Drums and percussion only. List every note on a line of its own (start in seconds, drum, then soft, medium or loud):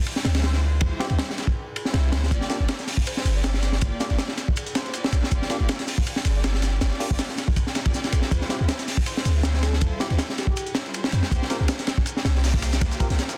0.06 ride medium
0.16 snare medium
0.25 snare loud
0.25 ride medium
0.35 snare loud
0.35 ride medium
0.43 snare loud
0.43 ride medium
0.53 snare medium
0.81 kick loud
0.81 ride loud
1.00 snare medium
1.00 ride medium
1.10 ride soft
1.19 snare loud
1.19 ride loud
1.30 snare medium
1.38 snare soft
1.38 ride medium
1.47 kick loud
1.76 ride medium
1.85 snare medium
1.94 snare loud
1.94 ride medium
2.12 snare loud
2.12 ride medium
2.23 snare medium
2.31 kick loud
2.31 ride medium
2.31 shaker medium
2.41 snare medium
2.50 snare medium
2.50 ride medium
2.50 shaker medium
2.68 snare loud
2.68 ride medium
2.68 shaker medium
2.79 snare soft
2.79 closed hi-hat soft
2.87 snare soft
2.87 open hi-hat medium
2.87 shaker medium
2.97 kick medium
3.06 ride medium
3.06 shaker medium
3.17 snare medium
3.25 ride medium
3.25 shaker medium
3.44 snare loud
3.44 ride medium
3.44 shaker medium
3.54 snare medium
3.62 snare soft
3.62 ride medium
3.62 shaker medium
3.72 snare soft
3.81 kick loud
3.81 ride medium
3.81 shaker medium
4.00 snare medium
4.00 ride medium
4.00 shaker medium
4.10 snare soft
4.10 ride soft
4.18 snare loud
4.18 ride medium
4.18 shaker medium
4.28 snare medium
4.37 snare soft
4.37 ride medium
4.37 shaker medium
4.48 kick loud
4.56 ride loud
4.56 shaker medium
4.66 closed hi-hat soft
4.75 snare loud
4.75 ride medium
4.75 shaker medium
4.85 snare medium
4.85 ride soft
4.93 ride medium
4.93 shaker medium
5.04 snare loud
5.12 ride medium
5.12 shaker medium
5.23 snare medium
5.23 snare soft
5.31 kick loud
5.31 ride medium
5.31 shaker medium
5.42 snare medium
5.50 snare medium
5.50 ride medium
5.50 shaker medium
5.69 snare loud
5.69 ride medium
5.69 shaker medium
5.79 snare medium
5.79 closed hi-hat soft
5.87 snare soft
5.87 open hi-hat medium
5.87 shaker medium
5.98 kick loud
6.06 ride medium
6.06 shaker medium
6.16 snare medium
6.25 ride medium
6.25 shaker medium
6.44 snare loud
6.44 ride medium
6.44 shaker medium
6.54 snare medium
6.62 snare soft
6.62 ride medium
6.62 shaker medium
6.81 snare loud
6.81 ride loud
6.81 shaker medium
6.91 snare soft
7.00 snare soft
7.00 open hi-hat medium
7.00 shaker medium
7.10 kick medium
7.10 snare soft
7.19 snare loud
7.19 ride medium
7.19 shaker medium
7.28 snare soft
7.37 snare soft
7.37 ride medium
7.37 shaker medium
7.48 kick loud
7.56 kick loud
7.56 ride medium
7.56 shaker medium
7.67 snare soft
7.75 snare loud
7.75 snare soft
7.75 ride medium
7.75 shaker medium
7.85 kick loud
7.85 snare medium
7.85 ride medium
7.94 snare soft
7.94 shaker medium
8.04 snare soft
8.04 ride medium
8.12 ride medium
8.12 shaker medium
8.22 snare soft
8.22 snare medium
8.31 kick loud
8.31 ride loud
8.31 shaker medium
8.41 snare soft
8.49 snare medium
8.49 ride medium
8.49 shaker medium
8.69 snare loud
8.69 ride loud
8.69 shaker medium
8.79 snare soft
8.79 closed hi-hat soft
8.88 snare soft
8.88 open hi-hat medium
8.88 shaker medium
8.97 kick loud
9.06 ride medium
9.06 shaker medium
9.17 snare medium
9.25 ride medium
9.25 shaker medium
9.43 snare loud
9.43 ride medium
9.43 shaker medium
9.54 snare medium
9.63 snare soft
9.63 ride medium
9.63 shaker medium
9.73 snare soft
9.81 kick loud
9.81 ride medium
9.81 shaker medium
10.00 snare medium
10.00 ride medium
10.00 shaker medium
10.10 snare soft
10.10 ride soft
10.19 snare loud
10.19 ride medium
10.19 shaker medium
10.29 snare medium
10.38 snare soft
10.38 ride medium
10.38 shaker medium
10.47 kick loud
10.56 ride medium
10.56 shaker loud
10.66 closed hi-hat soft
10.75 snare loud
10.75 ride medium
10.75 shaker medium
10.85 snare medium
10.85 ride soft
10.94 ride medium
10.94 shaker medium
11.04 snare loud
11.12 ride medium
11.12 shaker medium
11.23 snare soft
11.23 snare medium
11.31 kick loud
11.31 ride loud
11.31 shaker medium
11.42 snare soft
11.50 snare soft
11.50 ride medium
11.50 shaker medium
11.68 snare loud
11.68 ride medium
11.68 shaker medium
11.79 snare medium
11.79 closed hi-hat soft
11.87 snare loud
11.87 snare soft
11.87 ride medium
11.87 shaker medium
11.97 kick medium
12.06 ride medium
12.06 shaker loud
12.17 snare medium
12.25 snare loud
12.25 ride medium
12.25 shaker medium
12.35 snare soft
12.44 snare loud
12.44 snare soft
12.44 open hi-hat medium
12.44 shaker medium
12.54 kick medium
12.54 snare medium
12.62 snare loud
12.62 ride medium
12.62 shaker medium
12.73 snare loud
12.73 snare medium
12.73 shaker medium
12.81 kick loud
12.81 snare loud
12.81 ride medium
12.81 shaker medium
12.91 snare loud
12.91 shaker medium
13.00 kick loud
13.00 snare loud
13.00 ride medium
13.00 shaker medium
13.10 snare soft
13.10 closed hi-hat soft
13.19 snare soft
13.19 ride medium
13.19 shaker medium
13.29 snare loud
13.29 shaker medium